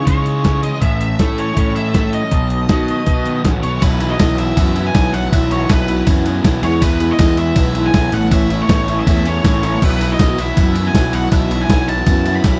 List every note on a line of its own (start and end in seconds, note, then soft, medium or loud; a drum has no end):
0.00 0.24 C#3 medium
0.00 0.82 C#3 medium
0.00 0.43 E3 medium
0.00 0.82 E3 medium
0.00 0.83 G#3 medium
0.00 0.83 D#4 medium
0.05 0.71 C#3 medium
0.05 0.62 G#3 medium
0.05 0.62 C#5 medium
0.05 kick loud
0.05 closed hi-hat medium
0.25 0.82 C#3 medium
0.25 closed hi-hat medium
0.44 0.82 E3 medium
0.44 kick medium
0.44 snare loud
0.44 closed hi-hat medium
0.62 0.82 G#3 medium
0.62 0.81 D#5 medium
0.62 closed hi-hat medium
0.81 1.14 A1 loud
0.81 1.76 A2 medium
0.81 1.39 E5 medium
0.81 kick loud
0.81 closed hi-hat medium
1.01 closed hi-hat medium
1.19 1.51 A2 medium
1.19 1.95 A3 medium
1.19 kick loud
1.19 snare loud
1.19 closed hi-hat medium
1.38 1.76 E3 medium
1.38 1.56 C#5 medium
1.38 closed hi-hat medium
1.57 2.21 A2 medium
1.57 2.12 C#4 medium
1.57 1.75 C#5 medium
1.57 kick loud
1.57 closed hi-hat medium
1.76 2.33 E3 medium
1.76 2.15 E5 medium
1.76 closed hi-hat soft
1.94 2.33 A3 medium
1.94 kick loud
1.94 snare loud
1.94 closed hi-hat medium
2.13 2.32 C#4 medium
2.13 3.41 D#5 medium
2.13 closed hi-hat medium
2.23 snare soft
2.31 2.64 B1 loud
2.31 3.26 B2 medium
2.31 kick loud
2.31 closed hi-hat medium
2.50 closed hi-hat medium
2.69 3.01 B2 medium
2.69 3.43 F#3 medium
2.69 kick loud
2.69 snare loud
2.69 closed hi-hat medium
2.88 3.24 D#3 medium
2.88 closed hi-hat medium
3.06 3.39 B2 medium
3.06 3.61 B3 medium
3.06 kick loud
3.06 closed hi-hat medium
3.25 3.82 D#3 medium
3.25 closed hi-hat medium
3.44 3.62 A1 medium
3.44 3.81 F#3 medium
3.44 kick medium
3.44 snare loud
3.44 closed hi-hat medium
3.63 3.80 B1 medium
3.63 3.82 B3 medium
3.63 3.82 C#5 medium
3.63 closed hi-hat medium
3.82 4.14 B1 loud
3.82 4.01 B2 medium
3.82 4.02 E3 medium
3.82 4.02 F#3 medium
3.82 4.02 B3 medium
3.82 4.03 E4 loud
3.82 4.11 B4 medium
3.82 kick loud
3.82 ride loud
4.00 4.21 B2 medium
4.00 4.21 E3 medium
4.00 4.21 F#3 medium
4.00 4.21 B3 medium
4.00 4.22 E4 medium
4.00 ride medium
4.10 4.38 D#5 medium
4.19 4.52 B1 medium
4.19 4.38 B2 medium
4.19 4.40 E3 medium
4.19 4.39 F#3 loud
4.19 4.40 B3 medium
4.19 4.41 E4 medium
4.19 kick loud
4.19 snare loud
4.19 ride loud
4.38 4.56 B2 medium
4.38 4.58 E3 medium
4.38 4.58 F#3 medium
4.38 4.59 B3 medium
4.38 4.59 E4 medium
4.38 4.87 E5 medium
4.38 ride medium
4.57 4.89 F#2 loud
4.57 4.75 B2 medium
4.57 4.77 E3 loud
4.57 4.77 F#3 loud
4.57 4.77 B3 loud
4.57 4.78 E4 loud
4.57 kick loud
4.57 ride loud
4.76 4.94 B2 medium
4.76 4.95 E3 medium
4.76 4.95 F#3 medium
4.76 4.96 B3 medium
4.76 4.96 E4 medium
4.76 ride medium
4.86 5.15 G#5 loud
4.95 5.26 B1 medium
4.95 5.13 B2 medium
4.95 5.14 E3 medium
4.95 5.14 F#3 medium
4.95 5.15 B3 medium
4.95 5.15 E4 medium
4.95 kick loud
4.95 snare loud
4.95 ride loud
5.14 5.31 B2 medium
5.14 5.33 E3 medium
5.14 5.32 F#3 medium
5.14 5.33 B3 loud
5.14 5.33 E4 loud
5.14 5.33 F#5 loud
5.14 ride medium
5.24 snare soft
5.32 5.64 B1 loud
5.32 5.50 B2 medium
5.32 5.51 E3 loud
5.32 5.51 F#3 medium
5.32 5.52 B3 medium
5.32 5.52 E4 loud
5.32 5.52 E5 loud
5.32 kick loud
5.32 ride loud
5.51 5.68 B2 medium
5.51 5.69 E3 medium
5.51 5.69 F#3 medium
5.51 5.70 B3 medium
5.51 5.70 E4 loud
5.51 5.71 C#5 medium
5.51 ride medium
5.69 6.01 B1 loud
5.69 5.87 B2 medium
5.69 5.88 E3 medium
5.69 5.88 F#3 medium
5.69 5.89 B3 medium
5.69 5.90 E4 medium
5.69 6.04 B4 medium
5.69 kick loud
5.69 snare loud
5.69 ride loud
5.88 6.06 B2 medium
5.88 6.07 E3 medium
5.88 6.07 F#3 medium
5.88 6.08 B3 medium
5.88 6.09 E4 medium
5.88 ride medium
6.07 6.39 F#2 medium
6.07 6.25 B2 loud
6.07 6.26 E3 medium
6.07 6.26 F#3 loud
6.07 6.27 B3 medium
6.07 6.28 E4 loud
6.07 kick loud
6.07 ride loud
6.26 6.43 B2 medium
6.26 6.45 E3 medium
6.26 6.44 F#3 medium
6.26 6.45 B3 medium
6.26 6.46 E4 loud
6.26 ride medium
6.44 6.60 B1 loud
6.44 6.62 B2 medium
6.44 6.63 E3 medium
6.44 6.63 F#3 loud
6.44 6.64 B3 medium
6.44 6.64 E4 medium
6.44 kick loud
6.44 snare loud
6.44 ride loud
6.63 7.11 E2 medium
6.63 6.82 E3 loud
6.63 6.81 G#3 loud
6.63 6.83 B3 loud
6.63 6.83 E4 loud
6.63 6.82 C#5 medium
6.63 ride medium
6.82 7.00 E3 medium
6.82 7.00 G#3 medium
6.82 7.01 B3 medium
6.82 7.01 E4 medium
6.82 7.11 B4 medium
6.82 kick loud
6.82 ride loud
7.00 7.19 E3 medium
7.00 7.18 G#3 medium
7.00 7.19 B3 loud
7.00 7.20 E4 medium
7.00 ride medium
7.11 7.38 D#5 medium
7.19 7.51 E2 medium
7.19 7.37 E3 medium
7.19 7.36 G#3 medium
7.19 7.38 B3 medium
7.19 7.38 E4 loud
7.19 kick loud
7.19 snare loud
7.19 ride loud
7.37 7.56 E3 loud
7.37 7.56 G#3 medium
7.37 7.57 B3 loud
7.37 7.58 E4 medium
7.37 7.87 E5 medium
7.37 ride medium
7.56 7.88 B1 loud
7.56 7.75 E3 medium
7.56 7.75 G#3 loud
7.56 7.76 B3 loud
7.56 7.77 E4 loud
7.56 kick loud
7.56 ride loud
7.75 7.94 E3 medium
7.75 7.94 G#3 medium
7.75 7.95 B3 medium
7.75 7.96 E4 loud
7.75 ride medium
7.86 8.14 G#5 loud
7.94 8.10 B1 medium
7.94 8.13 E3 medium
7.94 8.12 G#3 medium
7.94 8.13 B3 loud
7.94 8.14 E4 loud
7.94 kick loud
7.94 snare loud
7.94 ride medium
8.12 8.61 A1 loud
8.12 8.30 A2 loud
8.12 8.31 E3 loud
8.12 8.31 A3 loud
8.12 8.32 B3 loud
8.12 8.30 C#4 loud
8.12 8.32 E4 loud
8.12 8.32 A4 loud
8.12 8.32 C#5 loud
8.12 8.32 F#5 medium
8.12 ride medium
8.23 snare soft
8.31 8.48 A2 medium
8.31 8.49 E3 loud
8.31 8.49 A3 medium
8.31 8.50 B3 medium
8.31 8.49 C#4 loud
8.31 8.51 E4 loud
8.31 8.50 A4 loud
8.31 8.51 C#5 medium
8.31 8.61 E5 medium
8.31 kick loud
8.31 ride loud
8.49 8.67 A2 medium
8.49 8.68 E3 medium
8.49 8.68 A3 medium
8.49 8.69 B3 medium
8.49 8.68 C#4 medium
8.49 8.70 E4 medium
8.49 8.69 A4 medium
8.49 8.70 C#5 medium
8.49 ride medium
8.62 8.99 C#5 medium
8.68 9.01 A1 loud
8.68 8.86 A2 medium
8.68 8.87 E3 medium
8.68 8.87 A3 medium
8.68 8.88 B3 medium
8.68 8.87 C#4 medium
8.68 8.88 E4 medium
8.68 8.88 A4 medium
8.68 8.88 C#5 loud
8.68 kick loud
8.68 snare loud
8.68 ride loud
8.87 9.04 A2 medium
8.87 9.06 E3 medium
8.87 9.05 A3 medium
8.87 9.06 B3 medium
8.87 9.06 C#4 medium
8.87 9.07 E4 medium
8.87 9.06 A4 loud
8.87 9.07 C#5 loud
8.87 ride medium
8.99 9.07 E5 medium
9.06 9.39 E2 medium
9.06 9.24 A2 loud
9.06 9.25 E3 loud
9.06 9.24 A3 medium
9.06 9.25 B3 medium
9.06 9.25 C#4 loud
9.06 9.26 E4 medium
9.06 9.26 A4 medium
9.06 9.26 C#5 loud
9.06 9.27 E5 loud
9.06 kick loud
9.06 ride loud
9.25 9.43 A2 medium
9.25 9.44 E3 medium
9.25 9.43 A3 medium
9.25 9.45 B3 medium
9.25 9.44 C#4 medium
9.25 9.45 E4 medium
9.25 9.45 A4 medium
9.25 9.45 C#5 medium
9.25 9.64 C#5 medium
9.25 ride medium
9.44 9.76 A1 medium
9.44 9.62 A2 medium
9.44 9.62 E3 medium
9.44 9.62 A3 medium
9.44 9.63 B3 medium
9.44 9.62 C#4 medium
9.44 9.64 E4 medium
9.44 9.63 A4 medium
9.44 9.63 C#5 loud
9.44 kick loud
9.44 snare loud
9.44 ride loud
9.63 9.81 A2 medium
9.63 9.82 E3 medium
9.63 9.81 A3 medium
9.63 9.82 B3 medium
9.63 9.81 C#4 medium
9.63 9.83 E4 medium
9.63 9.81 A4 loud
9.63 9.82 C#5 loud
9.63 9.81 C#5 medium
9.63 ride medium
9.73 snare soft
9.82 10.14 B1 loud
9.82 10.00 B2 loud
9.82 10.00 E3 loud
9.82 10.01 F#3 medium
9.82 10.01 B3 medium
9.82 10.01 E4 medium
9.82 10.02 F#4 medium
9.82 10.02 B4 loud
9.82 10.12 B4 medium
9.82 kick loud
9.82 crash loud
10.00 10.19 B2 medium
10.00 10.19 E3 medium
10.00 10.20 F#3 medium
10.00 10.20 B3 medium
10.00 10.21 E4 medium
10.00 10.21 F#4 medium
10.00 10.21 B4 medium
10.00 ride medium
10.12 10.40 D#5 loud
10.19 10.51 B1 medium
10.19 10.37 B2 medium
10.19 10.37 E3 medium
10.19 10.38 F#3 medium
10.19 10.39 B3 medium
10.19 10.39 E4 medium
10.19 10.39 F#4 medium
10.19 10.40 B4 medium
10.19 kick loud
10.19 snare loud
10.19 ride loud
10.19 tambourine loud
10.37 10.56 B2 medium
10.37 10.56 E3 medium
10.37 10.56 F#3 medium
10.37 10.58 B3 medium
10.37 10.58 E4 medium
10.37 10.58 F#4 loud
10.37 10.58 B4 medium
10.37 10.88 E5 loud
10.37 ride medium
10.57 10.89 F#2 loud
10.57 10.74 B2 medium
10.57 10.76 E3 medium
10.57 10.74 F#3 loud
10.57 10.75 B3 loud
10.57 10.76 E4 loud
10.57 10.75 F#4 loud
10.57 10.77 B4 loud
10.57 kick loud
10.57 ride loud
10.75 10.93 B2 medium
10.75 10.95 E3 loud
10.75 10.94 F#3 medium
10.75 10.95 B3 medium
10.75 10.95 E4 medium
10.75 10.95 F#4 medium
10.75 10.96 B4 medium
10.75 ride medium
10.87 11.15 G#5 loud
10.94 11.26 B1 medium
10.94 11.12 B2 medium
10.94 11.14 E3 medium
10.94 11.12 F#3 medium
10.94 11.13 B3 medium
10.94 11.14 E4 medium
10.94 11.13 F#4 medium
10.94 11.14 B4 loud
10.94 kick loud
10.94 snare loud
10.94 ride loud
10.94 tambourine loud
11.13 11.30 B2 medium
11.13 11.32 E3 medium
11.13 11.31 F#3 medium
11.13 11.32 B3 medium
11.13 11.32 E4 medium
11.13 11.32 F#4 loud
11.13 11.34 B4 loud
11.13 11.33 F#5 loud
11.13 ride medium
11.23 snare soft
11.32 11.64 B1 loud
11.32 11.49 B2 medium
11.32 11.51 E3 loud
11.32 11.49 F#3 medium
11.32 11.50 B3 medium
11.32 11.51 E4 loud
11.32 11.50 F#4 loud
11.32 11.52 B4 loud
11.32 11.61 E5 loud
11.32 kick loud
11.32 ride loud
11.50 11.68 B2 medium
11.50 11.69 E3 medium
11.50 11.68 F#3 medium
11.50 11.69 B3 medium
11.50 11.70 E4 medium
11.50 11.70 F#4 medium
11.50 11.71 B4 loud
11.50 ride medium
11.61 11.88 G#5 loud
11.69 12.01 B1 loud
11.69 11.86 B2 medium
11.69 11.87 E3 medium
11.69 11.87 F#3 medium
11.69 11.88 B3 medium
11.69 11.89 E4 medium
11.69 11.88 F#4 loud
11.69 11.89 B4 medium
11.69 kick loud
11.69 snare loud
11.69 ride loud
11.69 tambourine loud
11.88 12.05 B2 medium
11.88 12.05 E3 medium
11.88 12.06 F#3 medium
11.88 12.07 B3 medium
11.88 12.07 E4 medium
11.88 12.07 F#4 loud
11.88 12.08 B4 medium
11.88 12.35 A5 loud
11.88 ride medium
12.06 12.38 F#2 medium
12.06 12.25 B2 medium
12.06 12.25 E3 medium
12.06 12.25 F#3 loud
12.06 12.27 B3 loud
12.06 12.27 E4 loud
12.06 12.27 F#4 loud
12.06 12.28 B4 loud
12.06 kick loud
12.06 ride loud
12.25 12.43 B2 medium
12.25 12.43 E3 loud
12.25 12.44 F#3 medium
12.25 12.45 B3 loud
12.25 12.45 E4 medium
12.25 12.45 F#4 loud
12.25 12.46 B4 loud
12.25 ride medium
12.36 12.60 B5 loud
12.44 12.60 B1 loud
12.44 12.60 B2 medium
12.44 12.60 E3 medium
12.44 12.60 F#3 medium
12.44 12.60 B3 medium
12.44 12.60 E4 medium
12.44 12.60 F#4 medium
12.44 12.60 B4 loud
12.44 kick loud
12.44 snare loud
12.44 ride loud
12.44 tambourine medium